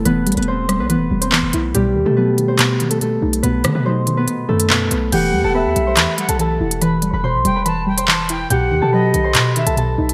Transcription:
<<
  \new Staff \with { instrumentName = "Flute" } { \time 4/4 \key e \minor \tempo 4 = 142 r1 | r1 | r1 | fis''4 e''4. fis''8 r4 |
r4. g''8 a''8 g''8 a''8 g''8 | fis''4 dis''4. e''8 r4 | }
  \new Staff \with { instrumentName = "Harp" } { \time 4/4 \key e \minor <b b'>8. <b b'>16 <c' c''>8. <b b'>16 <b b'>8. <c' c''>16 <b b'>4 | <g g'>8. <a a'>16 <b b'>8. <c' c''>16 <b b'>8. <a a'>16 <a a'>4 | <b b'>8. <b b'>16 <dis' c''>8. <b b'>8. <a a'>8 <b b'>4 | <g' g''>8. <a' a''>16 <b' b''>8. <c'' c'''>16 <b' b''>8. <a' a''>16 <a' a''>4 |
<b' b''>8. <b' b''>16 <c'' c'''>8. <b' b''>16 <b' b''>8. <c'' c'''>16 <b' b''>4 | <g' g''>8. <a' a''>16 <b' b''>8. <c'' c'''>16 <b' b''>8. <a' a''>16 <a' a''>4 | }
  \new Staff \with { instrumentName = "Synth pluck" } { \clef bass \time 4/4 \key e \minor <e g e'>8 g4 g8 e8 g8 e8 e'8 | b,8 dis8 fis8 dis8 b,8 dis8 b,8 dis'8 | b,8 dis8 fis8 dis8 b,8 dis8 b,8 b8 | e8 g8 b8 g8 e8 g8 e8 e'8 |
e8 g8 b,8 g8 e8 g8 e8 e'8 | b,8 dis8 fis8 dis8 b,8 dis8 b,8 dis'8 | }
  \new Staff \with { instrumentName = "808-style bass" } { \clef bass \time 4/4 \key e \minor e,,8 g,,16 e,,4 b,,16. e,,16. e,,8. e,,16 b,,8 | b,,8 dis,16 b,2~ b,8. b,,8 | b,,8 dis16 b,4.~ b,16 fis,4 b,,8 | e,,8 e,16 e,,8 e,16 b,,8 e,16 r8 b,,8. e,,8~ |
e,,8. e,,8 b,,16 e,,2~ e,,8 | b,,8 dis,16 b,8. b,,8 b,8. b,,8. b,,8 | }
  \new DrumStaff \with { instrumentName = "Drums" } \drummode { \time 4/4 hh8 hh32 hh32 hh32 hh32 r8 <hh ss>8 hh8. hh16 hc8 hh8 | hh4 r8 hh8 <hc hh>8 hh16 hh16 hh8. hh16 | hh8 <hh ss>8 r8 hh8 hh8. hh16 hc8 hh8 | <cymc hh>4 r8 hh8 <hc hh>8 hh16 hh16 hh8. hh16 |
hh8 hh8 r8 hh8 hh8. hh16 hc8 hh8 | hh4 r8 hh8 <hc hh>8 hh16 hh16 hh8. hh16 | }
>>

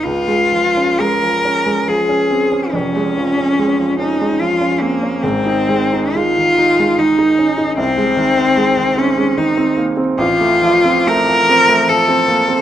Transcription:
<<
  \new Staff \with { instrumentName = "Cello" } { \time 3/4 \key des \major \tempo 4 = 73 f'4 bes'4 aes'4 | des'4. ees'8 f'8 bes8 | c'4 f'4 ees'4 | c'4. des'8 ees'8 r8 |
\key f \major f'4 bes'4 a'4 | }
  \new Staff \with { instrumentName = "Grand piano" } { \clef bass \time 3/4 \key des \major des,16 aes16 f16 des'16 aes16 f16 des'16 aes16 f16 des'16 c'16 des'16 | <f,, f,>16 aes16 f16 des'16 aes16 f16 des'16 aes16 f16 des'16 c'16 des'16 | <aes,, aes,>16 ees'16 aes16 ees'16 aes16 ees16 ees'16 aes16 ees16 ees'16 des'16 ees'16 | c,16 aes16 ees16 c'16 aes16 ees16 c'16 aes16 ees16 c'16 bes16 c'16 |
\key f \major a,,16 a16 f16 c'16 a16 f16 c'16 a16 f16 c'16 bes16 c'16 | }
>>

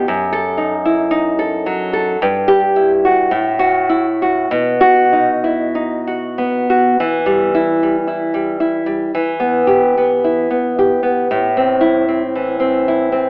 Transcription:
\new Staff \with { instrumentName = "Nylon-string guitar" } { \time 2/4 \key e \minor \tempo 4 = 56 << { r16 a'8 r4 r16 | r16 g'8 r8 fis'8 r16 | r16 fis'8 r4 r16 | r8 e'8 r4 |
r8 g'8 r4 | r8 e'8 r4 | } \\ { fis,8 dis'16 e'16 dis'16 a'16 fis16 a'16 | g,8 e'16 fis'16 a,8 e'16 fis'16 | b,8 dis'16 e'16 dis'16 fis'16 b16 fis'16 | e16 g8 g16 e'16 g16 e'16 g16 |
e16 b8 b16 e'16 b16 g'16 b16 | a,16 c'8 c'16 e16 c'16 e'16 c'16 | } >> }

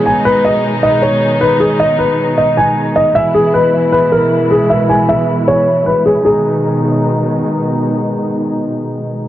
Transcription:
<<
  \new Staff \with { instrumentName = "Grand piano" } { \time 4/4 \key gis \minor \tempo 4 = 155 gis''8 b'8 dis''4 dis''8 cis''4 b'8 | gis'8 dis''8 b'4 dis''8 gis''4 dis''8 | e''8 gis'8 b'4 b'8 ais'4 gis'8 | e''8 gis''8 e''4 cis''4 b'8 gis'8 |
gis'2. r4 | r1 | }
  \new Staff \with { instrumentName = "String section" } { \clef bass \time 4/4 \key gis \minor <b, dis gis dis'>1~ | <b, dis gis dis'>1 | <b, e gis e'>1~ | <b, e gis e'>1 |
<b, dis gis dis'>1~ | <b, dis gis dis'>1 | }
>>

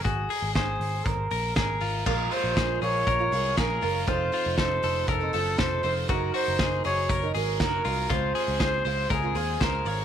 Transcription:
<<
  \new Staff \with { instrumentName = "Trumpet" } { \time 4/4 \key bes \minor \tempo 4 = 119 aes'4 aes'4 bes'4 bes'4 | bes'8 c''4 des''4. bes'4 | c''4 c''4 a'4 c''4 | bes'8 c''4 des''4 r8 bes'4 |
c''4 c''4 aes'4 bes'4 | }
  \new Staff \with { instrumentName = "Clean electric guitar" } { \time 4/4 \key bes \minor ges'8 aes'8 c''4. bes'8 aes'8 f'8 | f'8 f'8 aes'8 aes'8 bes'8 aes'8 aes'8 f'8 | f'8 f'8 a'8 a'8 bes'8 a'8 a'8 c''8 | ges'8 ges'8 aes'8 aes'8 bes'8 aes'8 ges'8 f'8 |
f'8 aes'8 aes'8 c''8 bes'8 aes'8 c''8 des''8 | }
  \new Staff \with { instrumentName = "Twelve-string acoustic guitar" } { \time 4/4 \key bes \minor r1 | <bes, f aes des' f' bes'>4. <aes des' f' bes'>8. <aes des' f' bes'>16 <aes des' f' bes'>8 <aes des' f' bes'>8 <aes des' f' bes'>8 | <f c' ees' a'>4. <f c' ees' a'>8. <c' ees' a'>16 <f c' ees' a'>8 <f c' ees' a'>8 <f c' ees' a'>8 | <ges des' ees' bes'>4. <ges des' ees' bes'>8. <des' ees' bes'>16 <ges des' ees' bes'>8 <ges des' ees' bes'>8 <ges des' ees' bes'>8 |
<des aes c' f' aes'>4. <aes c' f' aes'>8. <c' f' aes'>16 <aes c' f' aes'>8 <aes c' f' aes'>8 <aes c' f' aes'>8 | }
  \new Staff \with { instrumentName = "Picked electric bass" } { \clef bass \time 4/4 \key bes \minor aes,,8 r16 aes,,16 aes,,8 aes,,8 aes,,8 bes,,8 aes,,8 aes,,8 | bes,,8 r16 bes,,16 bes,,8 bes,,8 bes,,8 c,8 bes,,8 ges,,8 | f,,8 r16 f,,16 f,,8 f,,8 f,,8 ges,,8 f,,8 f,,8 | ges,,8 r16 ges,,16 ges,,8 ges,,8 ges,,8 aes,,8 ges,,8 c,8 |
des,8 r16 des,16 des,8 des,8 des,8 ees,8 des,8 aes,,8 | }
  \new DrumStaff \with { instrumentName = "Drums" } \drummode { \time 4/4 <hh bd>8 hho8 <hh bd sn>8 hho8 <hh bd>8 hho8 <hh bd sn>8 hho8 | <cymc bd>8 hho8 <hh bd sn>8 hho8 <hh bd>8 hho8 <hh bd sn>8 hho8 | <hh bd>8 hho8 <hh bd sn>8 hho8 <hh bd>8 hho8 <hh bd sn>8 hho8 | <hh bd>8 hho8 <hh bd sn>8 hho8 <hh bd>8 hho8 <hh bd sn>8 hho8 |
<hh bd>8 hho8 <hh bd sn>8 hho8 <hh bd>8 hho8 <hh bd sn>8 hho8 | }
>>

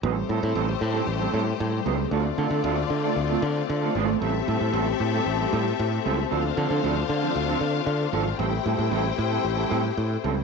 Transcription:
<<
  \new Staff \with { instrumentName = "String section" } { \time 4/4 \key a \minor \tempo 4 = 115 <a g' c''>1 | <a f' d''>1 | <c' a' e''>1 | <d' c'' f''>1 |
<e' c'' g''>1 | }
  \new Staff \with { instrumentName = "Clean electric guitar" } { \time 4/4 \key a \minor <g c' e' a'>8 <g c' e' a'>16 <g c' e' a'>16 <g c' e' a'>16 r8 <g c' e' a'>16 r16 <g c' e' a'>16 <g c' e' a'>16 r8. <g c' e' a'>8 | <a c' f' a'>16 r16 <a c' f' a'>16 <a c' f' a'>16 <a c' f' a'>16 r8 <a c' f' a'>16 r16 <a c' f' a'>16 r8. <a c' f' a'>16 <a c' f' a'>8 | <g c' e' a'>16 r16 <g c' e' a'>16 <g c' e' a'>16 <g c' e' a'>16 r8 <g c' e' a'>16 r16 <g c' e' a'>16 <g c' e' a'>16 r8. <g c' e' a'>16 r16 | <f c' d' a'>16 r16 <f c' d' a'>16 <f c' d' a'>16 <f c' d' a'>16 r8 <f c' d' a'>16 r16 <f c' d' a'>16 r4 <f c' d' a'>16 r16 |
<g c' e' a'>16 r16 <g c' e' a'>16 <g c' e' a'>16 <g c' e' a'>16 r8 <g c' e' a'>16 r16 <g c' e' a'>16 <g c' e' a'>16 r8. <g c' e' a'>16 r16 | }
  \new Staff \with { instrumentName = "String section" } { \time 4/4 \key a \minor << { <g c'>1 | <d f'>1 | g'1 | <d f'>1 |
g'1 | } \\ { a1~ | a1~ | a1~ | a1~ |
a1 | } >> }
  \new Staff \with { instrumentName = "Fingered electric bass" } { \clef bass \time 4/4 \key a \minor a,,8 a,16 a,16 a,,8 a,8 a,,8 a,8 a,8 cis,8 | d,8 d16 d16 d,8 d8 d,8 d8 d8 gis,,8 | a,,8 a,16 a,16 a,,8 a,8 a,,8 a,8 a,8 cis,8 | d,8 d16 d16 d,8 d8 d,8 d8 d8 gis,,8 |
a,,8 a,16 a,16 a,,8 a,8 a,,8 a,8 a,8 cis,8 | }
>>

